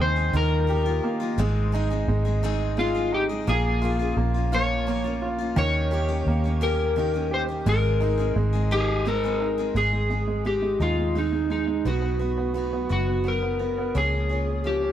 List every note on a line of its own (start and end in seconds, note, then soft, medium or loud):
0.00 0.31 D#2 loud
0.00 0.33 D#3 medium
0.00 0.18 G#3 soft
0.00 0.16 C4 medium
0.00 0.32 C4 medium
0.00 0.15 G#4 medium
0.00 0.36 C5 loud
0.16 0.34 G#3 soft
0.16 0.34 C4 soft
0.16 0.34 G#4 medium
0.33 0.99 D#2 loud
0.33 0.68 D#3 medium
0.33 1.35 D#3 medium
0.33 0.66 G3 medium
0.33 0.67 A#3 medium
0.33 0.68 D#4 medium
0.33 0.69 F4 medium
0.33 1.10 A#4 medium
0.67 0.85 G3 medium
0.67 0.86 A#3 medium
0.67 0.86 D#4 medium
0.67 0.84 F4 medium
0.67 1.36 G4 medium
0.86 1.22 A#3 soft
0.86 1.20 D#4 medium
0.86 1.19 F4 medium
1.04 1.37 A#3 medium
1.20 1.39 A#3 soft
1.20 1.38 D#4 medium
1.20 1.38 F4 medium
1.38 2.04 G#1 medium
1.38 1.73 G#2 medium
1.38 1.73 D#3 medium
1.38 1.71 G#3 loud
1.38 2.07 G#3 medium
1.38 1.72 C4 loud
1.38 1.73 D#4 loud
1.38 1.74 G#4 loud
1.72 1.90 G#3 medium
1.72 1.91 C4 medium
1.72 2.42 D#4 medium
1.72 1.90 D#4 medium
1.72 1.89 G#4 medium
1.90 2.27 G#3 medium
1.90 2.26 C4 medium
1.90 2.25 D#4 medium
1.90 2.24 G#4 medium
2.08 3.43 G#1 loud
2.08 2.76 G#3 medium
2.25 2.43 G#3 soft
2.25 2.43 C4 medium
2.25 2.43 D#4 medium
2.25 2.43 G#4 medium
2.43 2.78 G#2 medium
2.43 2.78 D#3 medium
2.43 2.76 G#3 medium
2.43 2.77 C4 loud
2.43 3.11 D#4 medium
2.43 2.78 D#4 medium
2.43 2.79 G#4 medium
2.77 2.95 G#3 medium
2.77 3.45 G#3 medium
2.77 2.95 C4 medium
2.77 2.95 D#4 medium
2.77 3.14 F4 medium
2.77 2.93 G#4 medium
2.95 3.31 G#3 soft
2.95 3.30 C4 soft
2.95 3.29 D#4 medium
2.95 3.28 G#4 medium
3.12 3.46 D#4 medium
3.12 3.24 G4 medium
3.29 3.47 G#3 soft
3.29 3.48 C4 soft
3.29 3.48 D#4 soft
3.29 3.47 G#4 medium
3.47 4.13 A#1 loud
3.47 3.82 A#2 medium
3.47 3.80 F3 medium
3.47 4.16 A#3 medium
3.47 3.81 A#3 medium
3.47 3.82 C#4 medium
3.47 3.83 F4 medium
3.47 4.14 G#4 loud
3.82 3.99 F3 medium
3.82 4.00 A#3 medium
3.82 3.99 C#4 medium
3.82 4.51 F4 medium
3.82 3.98 F4 medium
3.99 4.36 A#3 soft
3.99 4.35 C#4 medium
3.99 4.33 F4 medium
4.17 5.52 A#1 loud
4.17 4.86 A#3 medium
4.34 4.52 A#3 soft
4.34 4.52 C#4 soft
4.34 4.52 F4 medium
4.52 4.87 A#2 medium
4.52 4.85 F3 medium
4.52 4.87 A#3 medium
4.52 4.88 C#4 medium
4.52 5.20 F4 medium
4.52 4.88 F4 medium
4.52 5.28 C#5 loud
4.87 5.04 F3 medium
4.87 5.55 A#3 medium
4.87 5.05 A#3 medium
4.87 5.05 C#4 medium
4.87 5.03 F4 medium
5.04 5.41 A#3 soft
5.04 5.39 C#4 medium
5.04 5.37 F4 medium
5.22 5.56 F4 medium
5.38 5.56 A#3 soft
5.38 5.57 C#4 medium
5.38 5.56 F4 medium
5.56 6.22 D#2 loud
5.56 5.90 D#3 medium
5.56 6.95 D#3 medium
5.56 5.91 A#3 medium
5.56 5.92 C#4 medium
5.56 5.92 G4 loud
5.56 6.65 C#5 loud
5.91 6.09 D#3 medium
5.91 6.09 A#3 medium
5.91 6.09 C#4 medium
5.91 6.60 G4 medium
5.91 6.07 G4 medium
6.08 6.45 A#3 soft
6.08 6.44 C#4 medium
6.08 6.43 G4 medium
6.27 7.62 D#2 medium
6.27 7.63 A#3 medium
6.44 6.61 A#3 soft
6.44 6.61 C#4 medium
6.44 6.61 G4 medium
6.61 6.95 D#3 medium
6.61 6.96 A#3 medium
6.61 6.97 C#4 medium
6.61 7.30 G4 medium
6.61 6.97 G4 medium
6.61 7.33 A#4 medium
6.96 7.13 D#3 medium
6.96 7.64 D#3 medium
6.96 7.14 A#3 medium
6.96 7.14 C#4 medium
6.96 7.12 G4 medium
7.14 7.50 A#3 soft
7.14 7.49 C#4 medium
7.14 7.47 G4 medium
7.31 7.65 G4 medium
7.31 7.43 C5 loud
7.48 7.67 A#3 soft
7.48 7.67 C#4 soft
7.48 7.66 G4 medium
7.66 8.32 G#1 loud
7.66 8.01 G#2 medium
7.66 8.01 D#3 medium
7.66 8.35 G#3 medium
7.66 7.99 G#3 medium
7.66 8.01 C4 medium
7.66 8.02 D#4 medium
7.66 8.02 G#4 medium
7.66 8.33 A#4 medium
8.00 8.18 G#3 medium
8.00 8.19 C4 medium
8.00 8.70 D#4 medium
8.00 8.18 D#4 medium
8.00 8.16 G#4 medium
8.18 8.55 G#3 medium
8.18 8.54 C4 medium
8.18 8.53 D#4 medium
8.18 8.52 G#4 medium
8.36 9.71 G#1 loud
8.36 9.05 G#3 medium
8.53 8.71 G#3 soft
8.53 8.71 C4 soft
8.53 8.71 D#4 soft
8.53 8.70 G#4 medium
8.71 9.06 G#2 medium
8.71 9.06 D#3 medium
8.71 9.04 G#3 medium
8.71 9.05 C4 medium
8.71 9.39 D#4 soft
8.71 9.06 D#4 medium
8.71 9.07 G4 medium
8.71 9.46 G#4 loud
9.05 9.23 G#3 medium
9.05 9.74 G#3 medium
9.05 9.24 C4 medium
9.05 9.24 D#4 medium
9.05 9.23 G#4 medium
9.05 9.77 A#4 medium
9.24 9.60 G#3 soft
9.24 9.59 C4 soft
9.24 9.58 D#4 soft
9.24 9.57 G#4 medium
9.41 9.75 D#4 medium
9.58 9.75 G#3 soft
9.58 9.76 C4 medium
9.58 9.76 D#4 medium
9.58 9.75 G#4 medium
9.75 10.76 G#1 loud
9.75 10.11 G#2 medium
9.75 10.11 D#3 medium
9.75 9.91 G#3 medium
9.75 10.11 G#3 medium
9.75 10.11 C4 medium
9.75 10.10 D#4 medium
9.75 10.47 G#4 medium
9.75 10.09 G#4 medium
9.93 10.09 G#3 soft
10.10 10.26 G#3 soft
10.10 10.44 G#3 soft
10.10 10.45 C4 soft
10.10 10.46 D#4 soft
10.10 10.45 G#4 soft
10.28 10.44 G#3 soft
10.45 10.80 G#3 medium
10.45 10.61 G#3 soft
10.45 10.80 C4 medium
10.45 10.80 D#4 medium
10.45 10.82 G4 medium
10.62 10.96 G#3 soft
10.80 11.81 D#2 medium
10.80 11.17 G#2 soft
10.80 11.16 D#3 medium
10.80 11.14 G#3 medium
10.80 11.15 C4 medium
10.80 11.82 D#4 medium
10.80 11.16 D#4 medium
10.80 11.17 F4 medium
10.80 11.15 G#4 medium
10.98 11.14 G#3 soft
11.15 11.31 G#3 soft
11.15 11.50 G#3 medium
11.15 11.51 C4 medium
11.15 11.50 D#4 medium
11.15 11.49 G#4 medium
11.32 11.48 G#3 soft
11.50 11.66 G#3 soft
11.50 11.85 G#3 soft
11.50 11.86 C4 soft
11.50 11.86 D#4 soft
11.50 11.87 D#4 medium
11.50 11.85 G#4 soft
11.67 11.84 G#3 soft
11.85 12.86 B1 medium
11.85 12.20 B2 medium
11.85 12.20 F#3 medium
11.85 12.01 B3 medium
11.85 12.21 B3 medium
11.85 12.20 D#4 medium
11.85 12.18 F#4 medium
11.85 12.91 F#4 medium
12.02 12.18 B3 soft
12.19 12.36 B3 medium
12.19 12.54 B3 soft
12.19 12.55 D#4 soft
12.19 12.55 F#4 soft
12.38 12.52 B3 medium
12.54 12.90 F#3 medium
12.54 12.71 B3 soft
12.54 12.89 B3 medium
12.54 12.89 D#4 medium
12.54 12.88 F#4 medium
12.73 13.06 B3 medium
12.89 13.91 F#1 medium
12.89 13.26 B2 soft
12.89 13.23 F#3 medium
12.89 13.24 B3 medium
12.89 13.25 D#4 medium
12.89 13.25 F#4 medium
12.89 13.92 F#4 medium
12.89 13.27 F#4 medium
13.08 13.23 B3 soft
13.24 13.59 F#3 medium
13.24 13.41 B3 medium
13.24 13.60 B3 medium
13.24 13.60 D#4 medium
13.24 13.58 F#4 medium
13.28 13.98 A#4 medium
13.43 13.59 B3 medium
13.59 13.77 B3 medium
13.59 13.95 B3 soft
13.59 13.95 D#4 soft
13.59 13.95 F#4 soft
13.78 13.95 B3 soft
13.95 14.92 C#2 medium
13.95 14.30 C#3 medium
13.95 14.30 F3 medium
13.95 14.30 A#3 medium
13.95 14.12 C#4 medium
13.95 14.30 F4 medium
13.95 14.28 G#4 medium
13.95 14.67 G#4 medium
14.13 14.29 C#4 soft
14.29 14.64 A#3 soft
14.29 14.47 C#4 soft
14.29 14.65 F4 soft
14.29 14.64 G#4 medium
14.48 14.64 C#4 soft
14.64 14.92 F3 medium
14.64 14.92 A#3 medium
14.64 14.82 C#4 soft
14.64 14.92 F4 medium
14.64 14.92 G4 medium
14.83 14.92 C#4 soft